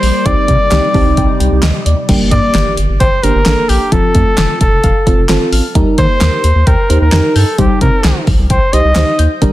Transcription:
Already playing: string machine G3 A#3 D5, flugelhorn C5
0.03 analog synth bass A#1, open hi-hat
0.26 analog synth bass C2, string machine C3 G3 D#4, fm electric piano C4 D#4 G4, flugelhorn D5, kick, closed hi-hat
0.48 analog synth bass C3, kick, closed hi-hat
0.71 analog synth bass C2, fm electric piano C4 D#4 G4, snare, clap, closed hi-hat
0.94 analog synth bass C2, fm electric piano C4 D#4 G4 A5, kick, open hi-hat
1.06 analog synth bass C2
1.17 analog synth bass C2, fm electric piano G5, kick, closed hi-hat
1.40 analog synth bass C2, fm electric piano G5, closed hi-hat
1.52 analog synth bass C2
1.63 analog synth bass D2, fm electric piano D#5, snare, clap, closed hi-hat
1.86 analog synth bass D#2, fm electric piano D5, closed hi-hat
2.09 analog synth bass G1, synth arpeggio sound G3, fm electric piano A#3 D4 G4, kick, closed hi-hat, crash, impact
2.31 analog synth bass G2, synth arpeggio sound A#3, flugelhorn D5, kick, closed hi-hat
2.55 analog synth bass G1, snare, clap, closed hi-hat
2.77 analog synth bass G1, closed hi-hat
2.89 analog synth bass G1
3.00 analog synth bass G1, flugelhorn C5, synth arpeggio sound G5, kick, closed hi-hat
3.23 analog synth bass G1, fm electric piano A#3 D4 G4, flugelhorn A#4, synth arpeggio sound A#5, closed hi-hat
3.35 analog synth bass G1
3.46 analog synth bass A1, fm electric piano A#3 D4 A4, snare, clap, closed hi-hat
3.69 analog synth bass A#1, flugelhorn G4, synth arpeggio sound G6, open hi-hat
3.92 analog synth bass F1, synth arpeggio sound F3, fm electric piano C4 F4 A4, flugelhorn A4, kick, closed hi-hat
4.15 analog synth bass F2, synth arpeggio sound A3, kick, closed hi-hat
4.38 analog synth bass F1, snare, clap, closed hi-hat
4.61 analog synth bass F1, flugelhorn A4, kick, closed hi-hat
4.72 analog synth bass F1
4.84 analog synth bass F1, synth arpeggio sound F5, kick, closed hi-hat
5.06 analog synth bass F1, fm electric piano C4 F4 A4, synth arpeggio sound A5, kick, closed hi-hat
5.18 analog synth bass F1
5.29 analog synth bass G1, fm electric piano C4 F4 A4, snare, clap, closed hi-hat
5.52 analog synth bass A1, synth arpeggio sound F6, open hi-hat
5.75 analog synth bass D#2, synth arpeggio sound G3, fm electric piano D#4 G4 A#4, kick, closed hi-hat
5.98 analog synth bass D#3, synth arpeggio sound A#3, flugelhorn C5, kick, closed hi-hat
6.21 analog synth bass D#2, snare, clap, closed hi-hat
6.44 analog synth bass D#2, closed hi-hat
6.55 analog synth bass D#2
6.67 analog synth bass D#2, flugelhorn A#4, synth arpeggio sound G5, kick, closed hi-hat
6.90 analog synth bass D#2, fm electric piano D#4 G4 C5, synth arpeggio sound A#5, closed hi-hat
7.01 analog synth bass D#2, flugelhorn A#4
7.12 analog synth bass F2, fm electric piano D#4 G4 A#4, snare, clap, closed hi-hat
7.35 analog synth bass G2, flugelhorn A4, synth arpeggio sound G6, open hi-hat
7.58 analog synth bass C2, synth arpeggio sound G3, fm electric piano D#4 G4 C5, flugelhorn G4, kick, closed hi-hat
7.81 analog synth bass C3, synth arpeggio sound C4, flugelhorn A#4, kick, closed hi-hat
8.04 analog synth bass C2, snare, clap, closed hi-hat
8.27 analog synth bass C2, kick, open hi-hat
8.39 analog synth bass C2
8.50 analog synth bass C2, flugelhorn C5, synth arpeggio sound G5, kick, closed hi-hat
8.73 analog synth bass C2, fm electric piano D#4 G4 C5, flugelhorn D#5, synth arpeggio sound C6, closed hi-hat
8.84 analog synth bass C2
8.96 analog synth bass D2, fm electric piano D#4 G4 C5, snare, clap, closed hi-hat
9.19 analog synth bass D#2, synth arpeggio sound G6, closed hi-hat
9.42 analog synth bass G1, synth arpeggio sound G3, fm electric piano D4 G4 A#4, kick, closed hi-hat

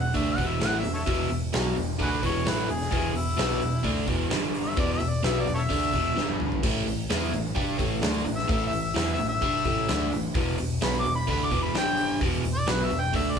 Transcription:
Already playing: fingered electric bass E1
0.00 harmonica F#5
0.14 fingered electric bass D2, overdriven electric guitar D3 A3 D4, harmonica E5, kick, open hi-hat
0.31 harmonica F#5
0.37 fingered electric bass E1, overdriven electric guitar E2 B2 E3, kick, open hi-hat
0.46 harmonica E5
0.60 fingered electric bass A1, overdriven electric guitar A2 E3 A3, harmonica F#5, snare, open hi-hat
0.78 harmonica E5
0.83 fingered electric bass E1, overdriven electric guitar E2 B2, open hi-hat
0.94 harmonica A4 C#5 E5
1.06 fingered electric bass E1, overdriven electric guitar E2 B2 E3, kick, open hi-hat
1.30 fingered electric bass E1, overdriven electric guitar E2 B2, open hi-hat
1.53 fingered electric bass B1, overdriven electric guitar B2 F#3 B3, snare, open hi-hat
1.76 fingered electric bass E1, overdriven electric guitar E2 B2, open hi-hat
1.99 fingered electric bass D2, overdriven electric guitar D3 A3 D4, harmonica F#4 G#4 B4, kick, open hi-hat
2.22 fingered electric bass E1, overdriven electric guitar E2 B2 E3, harmonica C#5, kick, open hi-hat
2.44 fingered electric bass A1, overdriven electric guitar A2 E3 A3, snare, open hi-hat
2.49 harmonica B4
2.67 fingered electric bass E1, overdriven electric guitar E2 B2, harmonica G#4, open hi-hat
2.81 snare
2.91 fingered electric bass E1, overdriven electric guitar E2 B2 E3, kick, open hi-hat
3.14 fingered electric bass E1, overdriven electric guitar E2 B2, harmonica E4, open hi-hat
3.37 fingered electric bass B1, overdriven electric guitar B2 F#3 B3, snare, open hi-hat
3.59 fingered electric bass E1, overdriven electric guitar E2 B2, open hi-hat
3.83 fingered electric bass D2, overdriven electric guitar D3 A3 D4, kick, open hi-hat
4.07 fingered electric bass E1, overdriven electric guitar E2 B2 E3, kick, open hi-hat
4.30 fingered electric bass G1, overdriven electric guitar G2 D3 G3, snare, open hi-hat
4.54 open hi-hat
4.64 harmonica E5
4.77 fingered electric bass E1, overdriven electric guitar E2 B2 E3, harmonica D5, kick, open hi-hat
4.94 harmonica E5
5.00 fingered electric bass E1, overdriven electric guitar E2 B2, open hi-hat
5.09 harmonica D5
5.23 fingered electric bass B1, overdriven electric guitar B2 F#3 B3, harmonica E5, snare, open hi-hat
5.40 harmonica D5
5.46 fingered electric bass E1, overdriven electric guitar E2 B2, open hi-hat
5.55 harmonica A4 C#5 E5
5.69 fingered electric bass D2, overdriven electric guitar D3 A3 D4, kick, open hi-hat
5.93 fingered electric bass E1, overdriven electric guitar E2 B2 E3, kick, open hi-hat
6.16 fingered electric bass G1, overdriven electric guitar G2 D3 G3, snare
6.29 high tom
6.40 mid tom
6.52 floor tom
6.63 fingered electric bass A1, overdriven electric guitar A2 E3 A3, kick, open hi-hat, crash
6.86 fingered electric bass A1, overdriven electric guitar A2 E3, open hi-hat
7.09 fingered electric bass E2, overdriven electric guitar E3 B3 E4, snare, open hi-hat
7.32 fingered electric bass A1, overdriven electric guitar A2 E3, open hi-hat
7.55 fingered electric bass G2, overdriven electric guitar G3 D4 G4, kick, open hi-hat
7.78 fingered electric bass A1, overdriven electric guitar A2 E3 A3, kick, open hi-hat
8.01 fingered electric bass D2, overdriven electric guitar D3 A3 D4, snare, open hi-hat
8.25 fingered electric bass A1, overdriven electric guitar A2 E3, open hi-hat
8.36 harmonica E5, snare
8.48 fingered electric bass A1, overdriven electric guitar A2 E3 A3, harmonica E5, kick, open hi-hat
8.67 harmonica E5
8.71 fingered electric bass A1, overdriven electric guitar A2 E3, open hi-hat
8.82 harmonica E5
8.94 fingered electric bass E2, overdriven electric guitar E3 B3 E4, harmonica E5, snare, open hi-hat
9.13 harmonica E5
9.18 fingered electric bass A1, overdriven electric guitar A2 E3, open hi-hat
9.29 harmonica E5
9.42 fingered electric bass G2, overdriven electric guitar G3 D4 G4, kick, open hi-hat
9.65 fingered electric bass A1, overdriven electric guitar A2 E3 A3, kick, open hi-hat
9.88 fingered electric bass D2, overdriven electric guitar D3 A3 D4, snare, open hi-hat
10.12 fingered electric bass A1, overdriven electric guitar A2 E3, open hi-hat
10.35 fingered electric bass E1, overdriven electric guitar E2 B2 E3, kick, open hi-hat
10.58 fingered electric bass E1, overdriven electric guitar E2 B2, open hi-hat
10.81 fingered electric bass B1, overdriven electric guitar B2 F#3 B3, harmonica B5, snare, open hi-hat
10.99 harmonica D6
11.04 fingered electric bass E1, overdriven electric guitar E2 B2, open hi-hat
11.15 harmonica B5
11.27 fingered electric bass D2, overdriven electric guitar D3 A3 D4, harmonica B5, kick, open hi-hat
11.45 harmonica D6
11.51 fingered electric bass E1, overdriven electric guitar E2 B2 E3, kick, open hi-hat
11.63 harmonica B5
11.74 fingered electric bass G1, overdriven electric guitar G2 D3 G3, snare, open hi-hat
11.78 harmonica G5
11.98 open hi-hat
12.21 fingered electric bass E1, overdriven electric guitar E2 B2 E3, kick, open hi-hat
12.44 fingered electric bass E1, overdriven electric guitar E2 B2, open hi-hat
12.54 harmonica D5
12.67 fingered electric bass B1, overdriven electric guitar B2 F#3 B3, harmonica B4, snare, open hi-hat
12.85 harmonica E5
12.90 fingered electric bass E1, overdriven electric guitar E2 B2, open hi-hat
13.00 harmonica G5
13.13 fingered electric bass D2, overdriven electric guitar D3 A3 D4, harmonica E5, kick, open hi-hat
13.31 harmonica D5

